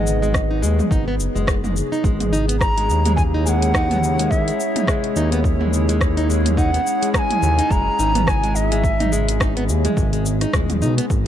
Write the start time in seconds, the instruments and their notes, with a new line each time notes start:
Already playing: analog synth bass G#1, ambient pad F#3 B3 D#4 G#4 B4, nylon-string guitar G#3, bansuri D#5
0.07 shaker
0.22 nylon-string guitar G#3, shaker
0.34 kick, cross-stick, shaker
0.51 nylon-string guitar D#4
0.62 analog synth bass D#2, nylon-string guitar G#3, shaker
0.79 mid tom, shaker
0.91 analog synth bass G#1, nylon-string guitar D#4, kick, shaker
1.08 nylon-string guitar B3
1.19 analog synth bass F#1, shaker
1.35 analog synth bass F#1, nylon-string guitar G#3, shaker
1.47 kick, cross-stick, shaker
1.64 nylon-string guitar G#3, mid tom, shaker
1.76 shaker
1.92 nylon-string guitar D#4, shaker
2.04 analog synth bass G#1, nylon-string guitar G#3, ambient pad E4, kick, shaker
2.20 closed hi-hat, mid tom, shaker
2.33 nylon-string guitar D#4, shaker
2.48 ambient pad G#3, nylon-string guitar B3, closed hi-hat, shaker
2.58 ambient pad C#4, bansuri A#5, kick, cross-stick
2.62 shaker
2.77 nylon-string guitar G#3, closed hi-hat
2.82 ambient pad C#5
2.89 analog synth bass D#2, shaker
3.05 nylon-string guitar G#3, closed hi-hat, mid tom, shaker
3.16 bansuri G#5, kick, shaker
3.34 nylon-string guitar D#4
3.45 nylon-string guitar G#3, bansuri F#5 G#5, shaker
3.62 closed hi-hat, shaker
3.74 nylon-string guitar D#4, kick, cross-stick, shaker
3.91 nylon-string guitar B3, closed hi-hat, mid tom, shaker
4.04 shaker
4.19 nylon-string guitar G#3, closed hi-hat, shaker
4.30 bansuri E5, kick, shaker
4.48 nylon-string guitar G#3, closed hi-hat, shaker
4.60 shaker
4.76 nylon-string guitar D#4, closed hi-hat, mid tom, shaker
4.87 nylon-string guitar G#3, kick, cross-stick, shaker
5.04 closed hi-hat
5.16 analog synth bass D#2, nylon-string guitar D#4, shaker
5.32 nylon-string guitar B3, closed hi-hat, shaker
5.44 kick, shaker
5.61 nylon-string guitar G#3, mid tom
5.73 shaker
5.89 nylon-string guitar G#3, closed hi-hat, shaker
6.01 kick, cross-stick, shaker
6.17 nylon-string guitar D#4, closed hi-hat, shaker
6.29 nylon-string guitar G#3, shaker
6.46 closed hi-hat, mid tom, shaker
6.57 nylon-string guitar D#4, bansuri F#5, kick, shaker
6.74 nylon-string guitar B3, closed hi-hat, shaker
6.87 shaker
7.02 nylon-string guitar G#3, closed hi-hat, shaker
7.14 bansuri A#5, kick, cross-stick, shaker
7.19 bansuri G#5
7.31 nylon-string guitar G#3, closed hi-hat, mid tom
7.43 analog synth bass D#2, shaker
7.59 nylon-string guitar D#4, closed hi-hat, shaker
7.71 analog synth bass F#1, nylon-string guitar G#3, bansuri A#5, kick, shaker
7.99 analog synth bass G#1, nylon-string guitar D#4, shaker
8.15 nylon-string guitar B3, closed hi-hat, mid tom, shaker
8.27 bansuri G#5, kick, cross-stick, shaker
8.44 nylon-string guitar G#3, closed hi-hat, shaker
8.55 bansuri D#5, shaker
8.67 bansuri E5
8.72 nylon-string guitar G#3, closed hi-hat, shaker
8.84 kick, shaker
9.00 nylon-string guitar D#4, closed hi-hat, mid tom, shaker
9.12 nylon-string guitar G#3, shaker
9.28 closed hi-hat, shaker
9.40 nylon-string guitar D#4, kick, cross-stick, shaker
9.57 nylon-string guitar B3, closed hi-hat
9.69 analog synth bass D#2, shaker
9.85 nylon-string guitar G#3, closed hi-hat, mid tom, shaker
9.97 analog synth bass G#1, kick, shaker
10.13 nylon-string guitar G#3, closed hi-hat, shaker
10.26 shaker
10.41 nylon-string guitar D#4, cross-stick, closed hi-hat, shaker
10.53 analog synth bass D#1, nylon-string guitar G#3, kick, cross-stick, shaker
10.70 closed hi-hat, mid tom, shaker
10.82 analog synth bass B1, nylon-string guitar D#4, shaker
10.98 nylon-string guitar B3, closed hi-hat, shaker
11.10 analog synth bass G#1, ambient pad D#3, kick, shaker